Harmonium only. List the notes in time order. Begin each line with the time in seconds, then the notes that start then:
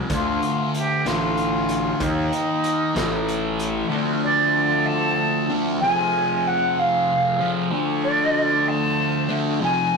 3.93 F3 C4 A4 D5
5.82 G#4 C5
7.71 D4 A4
9.59 C4 G#4